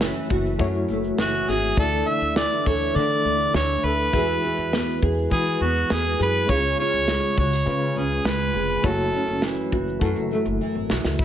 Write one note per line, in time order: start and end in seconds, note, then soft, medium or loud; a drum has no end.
0.00 0.59 F#2 medium
0.00 1.18 E3 medium
0.00 0.33 A3 medium
0.00 1.84 C#4 medium
0.00 0.33 E4 medium
0.00 0.30 F#4 medium
0.00 0.33 F#4 medium
0.00 0.34 C#5 medium
0.00 snare loud
0.00 shaker medium
0.16 shaker medium
0.30 0.54 F#1 medium
0.30 1.48 F#4 medium
0.30 kick medium
0.30 shaker soft
0.45 shaker soft
0.59 0.84 F#2 medium
0.59 1.84 F#2 medium
0.59 1.50 A3 medium
0.59 1.51 E4 medium
0.59 1.51 F#4 medium
0.59 1.52 C#5 medium
0.59 kick medium
0.59 shaker medium
0.74 shaker medium
0.89 1.13 F#1 medium
0.89 3.25 A3 medium
0.89 shaker soft
1.04 shaker soft
1.18 1.42 F#1 medium
1.18 2.36 E3 medium
1.18 1.50 F#4 medium
1.18 snare loud
1.18 shaker medium
1.34 shaker medium
1.48 1.72 G#1 medium
1.48 1.78 F#4 medium
1.48 1.78 G#4 medium
1.48 snare soft
1.62 shaker medium
1.76 2.01 D2 medium
1.76 2.95 D3 medium
1.76 2.68 A3 medium
1.76 2.69 D4 medium
1.76 2.69 E4 medium
1.76 2.65 A4 medium
1.76 2.09 A4 loud
1.76 2.69 D5 medium
1.76 kick loud
1.76 shaker medium
1.92 shaker soft
2.07 4.43 E4 medium
2.07 2.36 E5 loud
2.07 shaker soft
2.21 2.46 D2 medium
2.21 shaker soft
2.36 3.54 E3 medium
2.36 2.68 D5 medium
2.36 snare loud
2.36 shaker medium
2.52 shaker medium
2.66 2.90 D2 medium
2.66 3.84 A4 medium
2.66 2.97 C#5 medium
2.66 kick medium
2.66 shaker soft
2.82 shaker soft
2.94 3.20 D3 loud
2.94 4.19 D3 medium
2.94 3.86 A3 medium
2.94 3.86 D4 medium
2.94 3.86 E4 medium
2.94 3.87 A4 medium
2.94 3.54 D5 medium
2.94 shaker medium
3.10 shaker soft
3.25 3.49 D2 medium
3.25 4.19 A3 medium
3.25 shaker soft
3.40 shaker soft
3.54 3.78 D2 medium
3.54 4.14 E3 medium
3.54 3.86 C#5 medium
3.54 snare medium
3.54 shaker medium
3.69 shaker medium
3.83 4.08 D2 medium
3.83 4.14 A4 medium
3.83 5.02 B4 medium
3.99 shaker medium
4.12 4.37 E2 medium
4.12 5.31 E3 medium
4.12 5.04 G#3 medium
4.12 5.04 E4 medium
4.12 5.05 F#4 medium
4.12 5.02 G#4 medium
4.12 5.05 B4 medium
4.12 kick medium
4.12 shaker medium
4.28 shaker soft
4.44 6.55 F#4 medium
4.44 shaker medium
4.58 4.82 E2 medium
4.58 shaker medium
4.73 5.61 B3 medium
4.73 snare loud
4.73 shaker medium
4.88 shaker soft
5.02 5.26 E2 medium
5.02 6.19 G#4 medium
5.02 kick medium
5.18 shaker soft
5.30 5.55 E3 medium
5.30 6.55 E3 medium
5.30 6.22 G#3 medium
5.30 6.22 E4 medium
5.30 6.23 F#4 medium
5.30 5.63 G#4 medium
5.30 6.23 B4 medium
5.30 kick medium
5.30 shaker medium
5.46 shaker medium
5.61 5.85 E2 medium
5.61 5.90 B3 medium
5.61 5.94 F#4 medium
5.75 shaker soft
5.90 6.14 E2 medium
5.90 6.55 B3 medium
5.90 6.21 G#4 medium
5.90 snare loud
5.90 shaker medium
6.05 shaker medium
6.20 6.44 F#2 medium
6.20 6.50 G#4 medium
6.20 6.51 B4 loud
6.20 snare soft
6.20 shaker soft
6.34 shaker medium
6.46 6.73 C#2 medium
6.46 7.66 C#3 medium
6.46 7.39 G#3 medium
6.46 7.39 C#4 medium
6.46 7.40 F4 medium
6.46 7.38 G#4 medium
6.46 7.40 C#5 medium
6.46 6.78 C#5 loud
6.46 kick loud
6.46 shaker medium
6.64 shaker soft
6.79 8.90 F4 medium
6.79 7.34 C#5 loud
6.93 7.17 C#2 medium
6.93 shaker soft
7.08 8.24 G#3 medium
7.08 snare loud
7.08 shaker medium
7.23 shaker medium
7.37 7.61 C#2 medium
7.37 7.53 F#4 medium
7.37 8.00 C#5 medium
7.37 kick medium
7.53 8.54 G#4 soft
7.53 shaker soft
7.66 7.91 C#3 medium
7.66 8.91 C#3 medium
7.66 8.57 G#3 medium
7.66 8.58 C#4 medium
7.66 8.58 F4 medium
7.66 8.58 B4 medium
7.66 shaker medium
7.81 shaker soft
7.96 8.20 C#2 medium
7.96 9.14 C#4 medium
7.96 8.29 G#4 medium
7.96 shaker soft
8.10 shaker soft
8.25 8.49 C#2 medium
8.25 8.90 G#3 medium
8.25 8.88 B4 medium
8.25 snare loud
8.25 shaker medium
8.41 shaker soft
8.54 8.78 F1 medium
8.54 8.85 G#4 medium
8.69 shaker soft
8.82 9.08 F#1 loud
8.82 10.02 F#2 medium
8.82 9.74 A3 medium
8.82 9.75 E4 medium
8.82 9.75 F#4 medium
8.82 9.71 F#4 medium
8.82 9.75 C#5 medium
8.82 kick loud
8.82 shaker medium
8.86 9.44 A4 medium
8.99 shaker soft
9.13 11.25 C#4 medium
9.13 shaker soft
9.28 9.52 F#1 medium
9.28 shaker medium
9.42 10.61 E3 medium
9.42 snare loud
9.42 shaker medium
9.57 shaker medium
9.72 9.97 F#1 medium
9.72 10.89 F#4 medium
9.72 kick medium
9.72 shaker soft
9.88 shaker soft
10.00 10.13 F#2 medium
10.00 11.25 F#2 medium
10.00 10.92 A3 medium
10.00 10.92 E4 medium
10.00 10.93 F#4 medium
10.00 10.93 A4 medium
10.00 kick medium
10.00 shaker medium
10.16 10.28 F#1 medium
10.16 shaker medium
10.31 11.25 A3 medium
10.31 shaker soft
10.45 10.58 F#1 medium
10.45 shaker soft
10.61 11.25 E3 medium
10.75 10.87 G#1 medium
10.90 11.02 B1 medium
10.90 11.25 F#4 medium
10.90 snare medium
11.05 11.17 C#2 medium
11.05 snare medium
11.19 11.25 D2 medium
11.19 11.25 E4 medium
11.19 kick medium